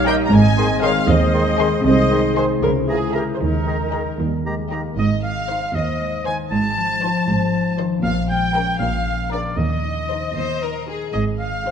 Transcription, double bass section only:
0.00 0.17 A#1 medium
0.32 0.93 G#1 medium
1.08 1.69 D#2 medium
1.85 2.47 C2 medium
2.62 3.25 C#2 medium
3.41 4.03 D#2 medium
4.19 4.82 D#2 medium
4.98 5.59 G#1 medium
5.75 6.36 D#2 medium
6.52 7.12 G#1 medium
7.28 7.88 G#1 medium
8.04 8.64 A#1 medium
8.80 9.42 A#1 medium
9.58 10.20 D#2 medium
10.35 10.98 D#2 soft
11.14 11.71 G#1 medium

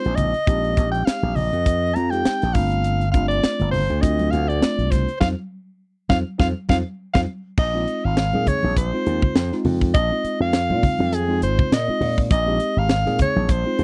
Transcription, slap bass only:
0.05 0.32 A#1 medium
0.47 0.74 A#1 medium
0.77 1.04 A#1 medium
1.23 1.50 A#1 medium
1.53 1.91 F2 medium
1.96 2.23 F2 medium
2.26 muted slap bass stroke soft
2.43 2.54 A#1 medium
2.55 3.10 G1 medium
3.14 3.41 G1 medium
3.44 muted slap bass stroke soft
3.61 3.87 G1 medium
3.90 4.28 D2 medium
4.33 4.60 D2 medium
4.62 muted slap bass stroke soft
4.78 5.05 C2 medium
5.21 5.34 F2 medium
6.10 6.22 F2 medium
6.40 6.52 F2 medium
6.69 6.82 F2 medium
7.15 7.25 F2 medium
7.58 7.85 A#1 medium
8.05 8.31 G#1 medium
8.34 8.46 A#2 medium
8.47 muted slap bass stroke soft
8.64 8.91 A#1 medium
9.06 9.21 D#2 medium
9.35 9.50 F2 medium
9.65 9.96 F2 medium
9.95 10.10 A#1 medium
10.24 muted slap bass stroke soft
10.40 10.71 F2 medium
10.70 10.82 A#2 medium
11.00 11.44 F2 medium
11.43 11.58 G#1 medium
11.72 11.87 A#2 medium
11.89 muted slap bass stroke soft
12.01 12.28 A#2 medium
12.31 12.58 A#1 medium
12.76 13.04 G#1 medium
13.07 13.19 A#2 medium
13.19 muted slap bass stroke soft
13.36 13.63 A#1 medium
13.79 13.84 D#2 medium

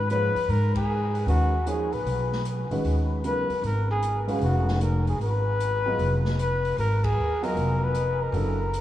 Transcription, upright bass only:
0.00 0.31 G#2 medium
0.35 muted upright bass stroke soft
0.48 1.23 G#2 medium
1.26 1.88 D#2 medium
1.92 2.04 A#1 medium
2.05 2.66 B1 medium
2.70 2.82 A#1 medium
2.84 3.45 D#2 medium
3.49 muted upright bass stroke soft
3.62 4.37 G#1 medium
4.39 5.14 F1 medium
5.18 5.93 G#1 medium
5.98 6.73 F1 medium
6.77 7.13 G#1 medium
7.16 7.53 D#2 medium
7.55 8.29 F1 medium
8.32 8.81 F#1 medium

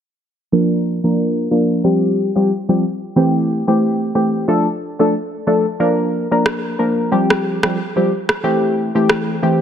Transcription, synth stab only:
0.52 1.00 F3 medium
0.52 1.00 A#3 medium
0.52 1.00 D4 medium
0.52 1.00 A#4 loud
1.04 1.48 F3 medium
1.04 1.48 A#3 medium
1.04 1.48 D4 medium
1.04 1.48 A#4 medium
1.51 1.82 F3 medium
1.51 1.82 A#3 medium
1.51 1.82 D4 medium
1.51 1.82 A#4 medium
1.84 2.31 F3 medium
1.84 2.31 G3 medium
1.84 2.31 C4 medium
1.84 2.32 G4 loud
2.35 2.51 F3 medium
2.35 2.51 G3 medium
2.35 2.51 C4 medium
2.35 2.51 G4 medium
2.69 2.84 F3 medium
2.69 2.84 G3 medium
2.69 2.84 C4 medium
2.69 2.84 G4 medium
3.16 3.63 E3 loud
3.16 3.63 A3 medium
3.16 3.63 C4 medium
3.16 3.63 G4 loud
3.67 4.12 E3 medium
3.67 4.12 A3 medium
3.67 4.12 C4 medium
3.67 4.12 G4 medium
4.15 4.46 E3 medium
4.15 4.46 A3 medium
4.15 4.46 C4 medium
4.15 4.46 G4 medium
4.48 4.67 F3 loud
4.48 4.67 A3 medium
4.48 4.67 D4 medium
4.48 4.67 A4 loud
4.99 5.14 F3 medium
4.99 5.14 A3 medium
4.99 5.15 D4 medium
4.99 5.15 A4 medium
5.47 5.66 F3 medium
5.47 5.66 A3 medium
5.47 5.66 D4 medium
5.47 5.66 A4 medium
5.80 6.27 F3 loud
5.80 6.27 A#3 medium
5.80 6.27 D4 medium
5.80 6.27 A#4 loud
6.31 6.75 F3 medium
6.31 6.75 A#3 medium
6.31 6.76 D4 medium
6.31 6.76 A#4 medium
6.79 7.09 F3 medium
6.79 7.10 A#3 medium
6.79 7.10 D4 medium
6.79 7.10 A#4 medium
7.11 7.59 F3 medium
7.11 7.59 G3 medium
7.11 7.59 C4 medium
7.11 7.59 G4 loud
7.63 7.78 F3 medium
7.63 7.78 G3 medium
7.63 7.78 C4 medium
7.63 7.78 G4 medium
7.96 8.11 F3 medium
7.96 8.11 G3 medium
7.96 8.11 C4 medium
7.96 8.11 G4 medium
8.43 8.91 E3 loud
8.43 8.91 A3 medium
8.43 8.91 C4 medium
8.43 8.91 G4 loud
8.95 9.39 E3 medium
8.95 9.39 A3 medium
8.95 9.39 C4 medium
8.95 9.39 G4 medium
9.42 9.61 E3 medium
9.42 9.61 A3 medium
9.42 9.61 C4 medium
9.42 9.61 G4 medium

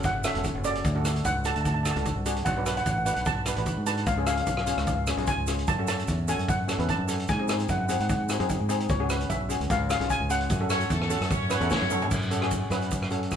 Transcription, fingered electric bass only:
0.00 0.29 F#1 medium
0.34 0.52 E1 medium
0.55 0.80 F#1 medium
0.84 1.19 D2 loud
1.25 1.52 C#2 medium
1.55 1.90 D2 medium
1.96 2.13 C#2 loud
2.16 2.42 C2 medium
2.46 2.81 B1 loud
2.86 3.13 A1 medium
3.17 3.52 B1 medium
3.57 3.74 A1 medium
3.77 4.03 G#2 medium
4.07 4.42 C#2 loud
4.47 4.74 B1 medium
4.77 5.13 C#2 medium
5.17 5.35 B1 loud
5.37 5.63 C#2 medium
5.68 6.03 F#2 loud
6.08 6.35 E2 medium
6.38 6.74 F#2 medium
6.78 6.96 E2 medium
6.98 7.24 F#2 medium
7.29 7.64 G#2 loud
7.69 7.96 F#2 medium
8.00 8.35 G#2 medium
8.40 8.57 F#2 loud
8.61 8.86 G#2 medium
8.89 9.24 C#2 loud
9.30 9.57 B1 medium
9.60 9.69 C#2 medium
9.70 9.97 C#2 loud
10.00 10.18 B1 medium
10.20 10.46 C#2 medium
10.50 10.85 F#2 loud
10.90 11.17 E2 medium
11.21 11.56 F#2 medium
11.61 11.78 E2 loud
11.81 12.07 F#2 medium
12.11 12.63 F#2 medium
12.70 13.36 F#2 medium

